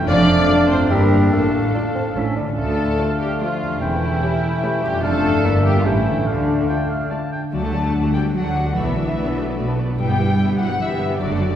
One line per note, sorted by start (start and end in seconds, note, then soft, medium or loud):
0.00 0.83 F2 medium
0.00 0.85 A3 medium
0.00 0.81 D4 medium
0.00 0.90 F4 medium
0.00 0.92 A4 soft
0.07 0.42 F1 medium
0.07 0.42 F2 medium
0.07 0.92 A3 medium
0.07 0.65 D4 medium
0.07 2.19 D4 medium
0.07 0.66 D5 loud
0.07 0.48 F5 medium
0.07 0.93 F5 medium
0.49 0.57 F3 medium
0.49 0.57 A4 soft
0.49 0.57 D5 medium
0.49 0.90 A5 medium
0.68 0.90 C4 medium
0.68 0.90 C5 loud
0.73 1.25 G2 medium
0.77 1.27 A#3 soft
0.82 1.18 D4 soft
0.86 0.98 E3 medium
0.86 1.31 A#3 medium
0.86 1.32 E4 soft
0.86 1.31 A#4 medium
0.86 1.32 G5 medium
0.90 1.25 G1 medium
0.90 1.25 G2 medium
0.90 1.32 G3 medium
0.90 0.98 G4 medium
0.90 0.98 D5 medium
0.90 1.34 E5 medium
1.14 1.97 A2 soft
1.19 2.11 D4 soft
1.23 2.13 F4 soft
1.32 1.67 A1 soft
1.32 1.67 A2 medium
1.32 2.34 A3 medium
1.32 1.69 A3 soft
1.32 2.35 A4 medium
1.32 2.36 F5 soft
1.32 2.19 F5 soft
1.74 1.82 A3 soft
1.74 1.84 D4 medium
1.74 1.82 F4 soft
1.74 1.83 D5 soft
1.95 2.50 A2 soft
1.95 2.05 C4 soft
2.02 2.52 C#4 soft
2.06 2.54 E4 soft
2.11 2.52 A4 soft
2.15 2.50 A1 soft
2.15 2.51 A2 soft
2.15 2.24 A3 soft
2.15 2.36 C#4 soft
2.15 2.37 C#4 medium
2.15 2.24 E4 soft
2.15 2.24 C#5 soft
2.15 2.37 E5 soft
2.36 3.73 D3 soft
2.36 2.46 D4 soft
2.44 3.76 D4 soft
2.48 3.78 F4 soft
2.53 3.75 A4 soft
2.57 2.92 D2 medium
2.57 3.15 A3 medium
2.57 4.99 A3 soft
2.57 3.77 D4 soft
2.57 3.15 A4 medium
2.57 3.77 D5 medium
2.57 3.77 F5 medium
2.98 3.06 A3 soft
2.98 3.06 F4 soft
2.98 3.07 D5 soft
3.20 3.29 G3 medium
3.20 3.39 G4 medium
3.39 3.80 F3 medium
3.39 3.48 A3 soft
3.39 3.80 F4 medium
3.39 3.48 F4 soft
3.39 3.48 D5 soft
3.63 4.96 E2 soft
3.67 4.98 C#4 soft
3.72 5.00 G4 soft
3.76 4.80 E3 medium
3.76 4.98 A4 soft
3.80 4.15 E1 medium
3.80 4.15 E2 medium
3.80 5.01 C#4 soft
3.80 4.83 E4 medium
3.80 4.21 G5 medium
3.80 5.05 G5 medium
4.22 4.30 A3 soft
4.22 4.30 G4 soft
4.22 4.30 C#5 soft
4.22 5.02 E5 medium
4.63 4.71 A3 soft
4.63 4.71 G4 medium
4.63 4.71 C#5 medium
4.82 5.37 F2 medium
4.82 5.03 G3 medium
4.82 5.03 G4 medium
4.90 5.30 D4 soft
4.94 5.41 F4 soft
4.99 5.37 F1 medium
4.99 5.63 A3 medium
4.99 5.43 A4 soft
4.99 5.63 A4 medium
5.03 5.37 F2 medium
5.03 5.12 A3 medium
5.03 5.46 A3 medium
5.03 5.86 D4 medium
5.03 5.12 F4 medium
5.03 5.83 D5 medium
5.03 5.12 D5 medium
5.03 5.46 F5 medium
5.27 5.78 G2 medium
5.31 5.80 D4 soft
5.36 6.24 E4 soft
5.40 5.78 G1 medium
5.40 5.78 G2 medium
5.40 5.52 A#3 soft
5.40 5.84 A#4 soft
5.44 5.87 A#3 medium
5.44 5.52 E4 soft
5.44 5.53 D5 medium
5.44 5.87 E5 medium
5.64 6.19 A2 soft
5.64 5.84 G3 medium
5.64 5.78 G4 medium
5.72 6.22 C#4 soft
5.77 5.85 F4 medium
5.77 6.24 G4 soft
5.81 6.19 A1 medium
5.81 6.19 A2 medium
5.81 6.25 E3 medium
5.81 5.93 A3 medium
5.81 6.26 C#4 medium
5.81 6.21 A4 soft
5.85 7.32 A3 medium
5.85 6.27 E4 medium
5.85 5.93 G4 medium
5.85 5.93 C#5 soft
5.85 6.26 E5 medium
5.85 6.28 G5 medium
6.08 7.45 D3 soft
6.13 7.71 D4 soft
6.17 7.49 F4 soft
6.22 8.13 A4 soft
6.26 6.61 D2 soft
6.26 6.61 D3 medium
6.26 7.11 D3 medium
6.26 7.30 D4 soft
6.26 7.09 D4 medium
6.26 6.64 F5 soft
6.26 7.30 F5 soft
6.68 6.77 A3 soft
6.68 6.77 F4 soft
6.68 6.77 D5 soft
6.68 6.91 G5 medium
6.89 7.12 F5 soft
7.10 7.19 A3 soft
7.10 7.18 F4 soft
7.10 7.18 D5 soft
7.10 7.31 A5 medium
7.32 7.41 G5 soft
7.52 7.88 D2 medium
7.52 8.77 D3 soft
7.52 7.62 F#3 medium
7.52 8.10 A3 medium
7.52 7.62 F#4 soft
7.52 7.62 D5 soft
7.52 8.10 A5 medium
7.63 7.73 A3 soft
7.63 7.73 D4 soft
7.63 7.73 A4 soft
7.63 7.73 F#5 soft
7.73 7.83 F#3 soft
7.73 8.95 D4 soft
7.73 7.83 F#4 soft
7.73 7.83 D5 soft
7.83 7.94 A3 soft
7.83 7.94 D4 soft
7.83 7.93 A4 soft
7.83 7.94 F#5 soft
7.93 8.30 D2 medium
7.93 8.03 F#3 soft
7.93 8.03 F#4 soft
7.93 9.16 F#4 soft
7.93 8.03 F#4 soft
7.93 8.03 D5 soft
8.03 8.14 A3 soft
8.03 8.14 D4 soft
8.03 8.13 A4 soft
8.03 8.13 F#5 soft
8.13 8.24 F#3 soft
8.13 8.34 G3 medium
8.13 8.24 F#4 soft
8.13 8.54 A4 soft
8.13 8.24 D5 soft
8.13 8.22 G5 medium
8.23 8.34 A3 soft
8.23 8.34 D4 soft
8.23 8.34 A4 soft
8.23 8.34 F#5 soft
8.34 8.71 D2 medium
8.34 8.44 F#3 soft
8.34 8.75 F#3 medium
8.34 8.44 F#4 soft
8.34 9.57 D5 soft
8.34 8.44 D5 soft
8.34 8.75 F#5 medium
8.44 8.55 A3 soft
8.44 8.55 D4 soft
8.44 8.55 A4 soft
8.44 8.55 F#5 soft
8.55 8.65 F#3 soft
8.55 8.65 F#4 soft
8.55 9.36 A4 soft
8.55 8.65 D5 soft
8.65 8.74 A3 soft
8.65 8.76 D4 soft
8.65 8.76 A4 soft
8.65 8.76 F#5 soft
8.75 9.12 B1 medium
8.75 10.00 B2 medium
8.75 9.78 E3 medium
8.75 8.85 A3 soft
8.75 8.85 F#4 medium
8.75 8.85 B4 medium
8.75 8.85 D5 medium
8.75 9.79 E5 medium
8.86 8.96 B3 soft
8.86 8.96 D4 soft
8.86 8.96 A4 soft
8.86 8.95 B4 soft
8.95 9.06 A3 soft
8.95 10.00 D4 soft
8.95 9.06 F#4 soft
8.95 9.06 B4 soft
8.95 9.06 D5 soft
9.06 9.16 B3 soft
9.06 9.16 D4 soft
9.06 9.17 A4 soft
9.06 9.16 B4 soft
9.16 9.53 B1 medium
9.16 9.26 A3 soft
9.16 9.26 F#4 soft
9.16 10.00 F#4 soft
9.16 9.26 B4 soft
9.16 9.26 D5 soft
9.26 9.37 B3 soft
9.26 9.37 D4 soft
9.26 9.37 A4 soft
9.26 9.36 B4 soft
9.36 9.47 A3 soft
9.36 9.47 F#4 soft
9.36 9.77 A4 soft
9.36 9.46 B4 soft
9.36 9.47 D5 soft
9.47 9.57 B3 soft
9.47 9.57 D4 soft
9.47 9.57 A4 soft
9.47 9.56 B4 soft
9.57 9.94 B1 medium
9.57 9.67 A3 soft
9.57 9.67 F#4 soft
9.57 9.67 B4 soft
9.57 9.67 D5 soft
9.57 10.00 D5 soft
9.67 9.78 B3 soft
9.67 9.77 D4 soft
9.67 9.78 A4 soft
9.67 9.77 B4 soft
9.77 9.88 A3 soft
9.77 9.88 F#4 soft
9.77 10.00 A4 soft
9.77 9.87 B4 soft
9.77 9.88 D5 soft
9.88 9.98 B3 soft
9.88 9.98 D4 soft
9.88 9.98 A4 soft
9.88 9.97 B4 soft
9.97 10.34 G1 medium
9.97 11.22 G2 medium
9.97 10.07 G3 medium
9.97 10.56 G3 medium
9.97 10.07 E4 medium
9.97 10.08 B4 medium
9.97 10.08 E5 medium
9.97 10.55 G5 medium
10.08 10.18 B3 soft
10.08 10.18 G4 soft
10.08 10.19 G4 soft
10.08 10.19 G5 soft
10.18 10.29 G3 soft
10.18 11.23 B3 soft
10.18 10.29 E4 soft
10.18 10.29 B4 soft
10.18 10.29 E5 soft
10.28 10.39 B3 soft
10.28 10.39 G4 soft
10.28 10.39 G5 soft
10.38 10.75 G1 medium
10.38 10.48 G3 soft
10.38 10.48 E4 soft
10.38 11.22 E4 medium
10.38 10.48 B4 soft
10.38 10.48 E5 soft
10.49 10.59 B3 soft
10.49 10.59 G4 soft
10.49 10.59 G5 soft
10.58 10.80 F#3 medium
10.58 10.69 G3 soft
10.58 10.69 E4 soft
10.58 10.99 G4 soft
10.58 10.69 B4 medium
10.58 10.69 E5 soft
10.58 10.79 F#5 medium
10.69 10.80 B3 soft
10.69 10.79 G4 soft
10.69 10.80 G4 soft
10.69 10.79 G5 soft
10.79 11.16 G1 medium
10.79 11.20 E3 medium
10.79 10.89 G3 soft
10.79 10.89 E4 soft
10.79 10.89 B4 medium
10.79 11.22 B4 soft
10.79 11.20 E5 medium
10.79 10.89 E5 medium
10.89 11.00 B3 soft
10.89 11.00 G4 soft
10.89 11.00 G5 soft
10.99 11.10 G3 soft
10.99 11.10 E4 soft
10.99 11.22 G4 soft
10.99 11.10 B4 soft
10.99 11.10 E5 medium
11.10 11.20 B3 medium
11.10 11.20 G4 soft
11.10 11.21 G4 soft
11.10 11.21 G5 medium
11.20 11.55 F#1 medium
11.20 11.55 F#2 medium
11.20 11.55 D3 medium
11.20 11.30 F#3 medium
11.20 11.30 F#4 medium
11.20 11.55 D5 medium
11.20 11.30 D5 medium
11.30 11.41 A3 medium
11.30 11.40 D4 medium
11.30 11.41 A4 medium
11.30 11.41 F#5 soft
11.40 11.51 F#3 soft
11.40 11.55 A3 soft
11.40 11.51 F#4 soft
11.40 11.51 D5 medium
11.50 11.55 A3 soft
11.50 11.55 D4 soft
11.50 11.55 A4 soft
11.50 11.55 F#5 medium